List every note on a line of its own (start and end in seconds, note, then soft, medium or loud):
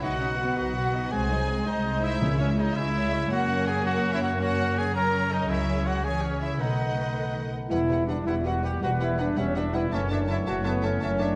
0.01 0.51 B1 soft
0.01 1.14 B2 soft
0.01 0.19 D#4 medium
0.01 0.18 F#4 soft
0.01 0.56 F#4 medium
0.01 0.19 B4 soft
0.01 0.56 F#5 medium
0.01 0.20 F#5 soft
0.19 0.92 B3 soft
0.19 0.28 C#4 soft
0.19 0.38 D#4 soft
0.19 0.37 F#4 soft
0.19 0.39 D#5 soft
0.37 1.11 B3 soft
0.37 0.56 F#4 soft
0.37 0.57 B4 soft
0.37 0.74 D#5 soft
0.37 0.56 F#5 soft
0.56 1.06 B1 medium
0.56 0.75 D#4 soft
0.56 0.74 F#4 soft
0.56 1.13 F#4 medium
0.56 1.14 B4 soft
0.56 0.75 D#5 soft
0.56 1.11 F#5 medium
0.75 0.92 F#4 soft
0.75 0.92 B4 soft
0.75 1.47 D#5 soft
0.75 0.92 F#5 soft
0.93 1.14 B3 soft
0.93 1.12 D#4 soft
0.93 1.12 F#4 soft
0.93 1.12 D#5 soft
1.11 1.61 C2 soft
1.11 2.23 C3 soft
1.11 1.31 G#3 medium
1.11 1.29 C4 soft
1.11 1.66 G#4 medium
1.11 1.29 G#4 soft
1.11 1.30 C5 soft
1.11 1.67 G#5 medium
1.30 1.38 F#3 medium
1.30 2.01 G#3 soft
1.30 1.48 D#4 soft
1.30 1.49 C5 soft
1.30 1.49 D#5 soft
1.48 3.27 G#3 medium
1.48 1.67 C4 soft
1.48 1.67 G#4 soft
1.48 1.67 C5 soft
1.48 1.84 D#5 soft
1.66 2.16 C2 medium
1.66 1.85 D#4 soft
1.66 2.05 D#4 medium
1.66 2.75 G#4 soft
1.66 1.85 C5 soft
1.66 1.85 D#5 soft
1.66 2.04 D#5 medium
1.85 2.03 C4 soft
1.85 2.02 G#4 soft
1.85 2.02 C5 soft
1.85 2.23 D#5 soft
2.02 2.39 G#3 soft
2.02 2.22 D#4 soft
2.02 2.40 E4 medium
2.02 2.22 C5 soft
2.02 2.22 D#5 soft
2.02 2.39 E5 medium
2.21 2.70 C#2 medium
2.21 3.32 C#3 medium
2.21 2.73 C#3 medium
2.21 2.39 E4 soft
2.21 2.39 G#4 soft
2.21 2.39 C#5 medium
2.39 3.11 G#3 soft
2.39 2.58 C#4 soft
2.39 2.48 C#4 medium
2.39 2.57 E4 soft
2.39 2.46 C#5 medium
2.39 2.58 E5 soft
2.57 2.75 D#4 medium
2.57 2.75 E4 soft
2.57 2.77 G#4 soft
2.57 2.76 C#5 soft
2.57 2.93 C#5 soft
2.57 2.76 D#5 medium
2.74 3.25 C#2 medium
2.74 2.95 C#4 soft
2.74 3.30 E4 medium
2.74 2.93 E4 soft
2.74 3.32 G#4 soft
2.74 2.94 E5 soft
2.74 3.31 E5 medium
2.94 3.11 E4 soft
2.94 3.12 G#4 soft
2.94 3.65 C#5 soft
2.94 3.12 C#5 soft
3.12 3.32 G#3 soft
3.12 3.29 C#4 soft
3.12 3.31 E4 soft
3.12 3.31 E5 soft
3.29 5.50 F#2 medium
3.29 5.46 F#2 medium
3.29 4.39 A#3 medium
3.29 3.82 C#4 medium
3.29 3.67 F#4 medium
3.29 3.82 A#4 medium
3.29 3.81 C#5 soft
3.29 3.66 F#5 medium
3.48 4.21 A#3 soft
3.66 3.85 G#4 medium
3.66 4.02 C#5 soft
3.66 3.86 G#5 medium
3.85 4.38 C#4 medium
3.85 4.12 F#4 medium
3.85 4.94 A#4 soft
3.85 4.38 A#4 medium
3.85 4.39 C#5 medium
3.85 4.13 F#5 medium
4.12 4.18 E4 medium
4.12 4.21 E5 medium
4.22 4.58 A#3 soft
4.22 4.40 F#4 medium
4.22 4.30 F#5 medium
4.39 5.49 C#3 soft
4.39 4.94 A#3 medium
4.39 4.93 C#4 medium
4.39 4.79 F#4 medium
4.39 4.93 A#4 medium
4.39 4.93 C#5 medium
4.39 4.76 F#5 medium
4.59 5.30 A#3 soft
4.77 4.95 G#4 medium
4.77 5.12 C#5 soft
4.77 4.96 G#5 medium
4.93 6.03 F#3 medium
4.93 5.48 C#4 medium
4.93 5.48 A#4 soft
4.93 5.51 A#4 soft
4.93 5.34 A#4 medium
4.93 5.48 C#5 medium
4.93 5.30 A#5 medium
5.13 6.03 C#5 soft
5.31 5.51 A#3 soft
5.31 5.51 D#4 medium
5.31 5.49 D#5 medium
5.49 6.58 C#2 soft
5.49 6.62 C#3 soft
5.49 6.03 C#4 medium
5.49 5.88 E4 medium
5.49 6.04 G#4 medium
5.49 6.03 C#5 medium
5.49 5.86 E5 medium
5.68 6.40 C#4 soft
5.85 6.06 F#4 medium
5.85 6.22 G#4 soft
5.85 6.04 F#5 medium
6.04 6.59 E3 soft
6.04 6.59 C#4 soft
6.04 6.24 G#4 medium
6.04 6.60 G#4 soft
6.04 6.59 C#5 soft
6.04 6.62 C#5 soft
6.04 6.23 G#5 medium
6.22 6.41 C#4 medium
6.22 6.62 G#4 soft
6.22 6.42 C#5 soft
6.41 6.62 C#4 soft
6.41 6.62 E4 medium
6.41 6.60 E5 soft
6.59 7.51 B1 soft
6.59 7.73 B2 soft
6.59 7.42 D#3 soft
6.59 7.53 A3 soft
6.59 7.53 D#4 soft
6.59 7.53 B4 soft
6.59 7.52 D#5 soft
6.59 7.51 F#5 soft
6.78 7.51 B3 soft
6.96 7.32 A4 soft
7.14 8.43 B4 soft
7.34 7.73 A4 soft
7.52 9.93 B3 soft
7.69 8.20 E1 soft
7.69 8.80 E2 soft
7.69 8.20 E2 soft
7.69 11.36 E3 medium
7.69 7.78 G3 soft
7.69 9.88 G3 medium
7.69 8.05 E4 medium
7.69 8.06 E4 medium
7.69 7.79 B4 soft
7.69 8.06 E5 medium
7.69 7.79 F#5 soft
7.89 8.99 B2 soft
7.89 7.97 G3 soft
7.89 7.98 B4 soft
7.89 7.99 F#5 soft
8.07 8.15 G3 soft
8.07 8.62 G3 soft
8.07 8.15 D4 medium
8.07 8.26 D4 medium
8.07 8.16 B4 soft
8.07 8.15 D5 soft
8.07 8.16 F#5 soft
8.25 8.76 E1 medium
8.25 8.76 E2 medium
8.25 8.33 G3 soft
8.25 8.44 E4 medium
8.25 8.35 E4 medium
8.25 9.36 F#4 soft
8.25 8.35 B4 soft
8.25 8.45 E5 medium
8.25 8.35 F#5 soft
8.44 8.52 G3 soft
8.44 8.63 F#4 medium
8.44 9.54 B4 soft
8.44 8.52 B4 soft
8.44 8.64 F#5 medium
8.44 8.53 F#5 soft
8.62 8.70 G3 soft
8.62 9.17 G3 soft
8.62 8.81 G4 medium
8.62 8.82 G4 medium
8.62 8.71 B4 soft
8.62 8.72 F#5 soft
8.62 8.82 G5 medium
8.80 9.31 E1 medium
8.80 9.93 E2 soft
8.80 9.31 E2 medium
8.80 8.88 G3 soft
8.80 8.90 F#4 medium
8.80 8.91 F#4 medium
8.80 9.39 B4 soft
8.80 8.90 B4 soft
8.80 9.00 F#5 medium
8.80 8.90 F#5 soft
8.99 9.93 B2 soft
8.99 9.07 G3 soft
8.99 9.18 E4 medium
8.99 9.21 E4 medium
8.99 9.08 B4 soft
8.99 9.19 E5 medium
8.99 9.07 F#5 soft
9.18 9.26 G3 soft
9.18 9.72 G3 soft
9.18 9.37 D4 medium
9.18 9.38 D4 medium
9.18 9.27 B4 soft
9.18 9.26 D5 medium
9.18 9.25 F#5 soft
9.36 9.86 E1 medium
9.36 9.85 E2 medium
9.36 9.45 G3 soft
9.36 9.55 C#4 medium
9.36 9.56 C#4 medium
9.36 11.36 F#4 soft
9.36 9.44 B4 soft
9.36 9.55 C#5 medium
9.36 9.92 E5 medium
9.36 9.44 F#5 soft
9.55 9.62 G3 soft
9.55 9.76 D4 medium
9.55 9.74 D4 medium
9.55 9.94 B4 soft
9.55 9.63 B4 soft
9.55 9.61 D5 medium
9.55 9.63 F#5 soft
9.73 9.93 G3 soft
9.73 9.82 G3 soft
9.73 9.92 E4 medium
9.73 9.95 E4 medium
9.73 9.82 B4 soft
9.73 9.92 E5 medium
9.73 9.81 F#5 soft
9.91 10.41 F#1 medium
9.91 10.41 F#2 medium
9.91 11.01 F#2 medium
9.91 9.99 A3 medium
9.91 11.36 A3 medium
9.91 10.10 C#4 medium
9.91 10.11 C#4 medium
9.91 10.11 C#5 medium
9.91 11.36 C#5 medium
9.91 10.01 E5 soft
9.91 9.99 A5 medium
10.09 11.19 C#3 soft
10.09 10.17 A3 soft
10.09 10.29 D4 medium
10.09 10.19 D4 medium
10.09 10.16 D5 soft
10.09 10.18 E5 soft
10.09 10.17 A5 soft
10.28 10.36 A3 soft
10.28 10.83 A3 soft
10.28 10.47 E4 medium
10.28 10.38 E4 medium
10.28 10.46 E5 medium
10.28 10.37 E5 soft
10.28 10.35 A5 soft
10.46 10.95 F#1 medium
10.46 10.96 F#2 medium
10.46 10.53 A3 soft
10.46 11.36 E4 soft
10.46 10.65 F#4 medium
10.46 10.67 F#4 medium
10.46 10.54 E5 soft
10.46 10.65 F#5 medium
10.46 10.53 A5 soft
10.64 10.72 A3 soft
10.64 10.83 B3 medium
10.64 10.86 B3 medium
10.64 11.36 A4 soft
10.64 10.83 B4 medium
10.64 10.72 E5 soft
10.64 10.72 A5 soft
10.83 10.90 A3 soft
10.83 11.36 A3 soft
10.83 10.99 C#4 medium
10.83 11.02 C#4 medium
10.83 11.01 C#5 soft
10.83 10.90 E5 soft
10.83 10.91 A5 soft
11.00 11.36 F#1 medium
11.00 11.36 F#2 medium
11.00 11.36 F#2 soft
11.00 11.08 A3 soft
11.00 11.19 C#4 medium
11.00 11.21 C#4 medium
11.00 11.20 C#5 medium
11.00 11.09 E5 soft
11.00 11.08 A5 soft
11.19 11.36 C#3 soft
11.19 11.27 A3 soft
11.19 11.36 D4 medium
11.19 11.36 D5 medium
11.19 11.29 E5 soft
11.19 11.26 A5 soft